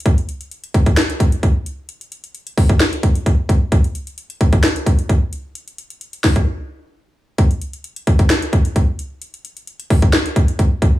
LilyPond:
\new DrumStaff \with { instrumentName = "Drums" } \drummode { \time 4/4 \tempo 4 = 131 <hh bd>16 hh16 hh16 hh16 hh16 hh16 <hh bd>16 <hh bd>16 sn16 hh16 <hh bd>16 hh16 <hh bd>8 hh8 | hh16 hh16 hh16 hh16 hh16 hh16 <hho bd>16 <hh bd>16 sn16 hh16 <hh bd>16 hh16 <hh bd>8 <hh bd>8 | <hh bd>16 hh16 hh16 hh16 hh16 hh16 <hh bd>16 <hh bd>16 sn16 hh16 <hh bd>16 hh16 <hh bd>8 hh8 | hh16 hh16 hh16 hh16 hh16 hh16 <hho bd sn>16 <hh bd>16 r4 r4 |
<hh bd>16 hh16 hh16 hh16 hh16 hh16 <hh bd>16 <hh bd>16 sn16 hh16 <hh bd>16 hh16 <hh bd>8 hh8 | hh16 hh16 hh16 hh16 hh16 hh16 <hho bd>16 <hh bd>16 sn16 hh16 <hh bd>16 hh16 <hh bd>8 <hh bd>8 | }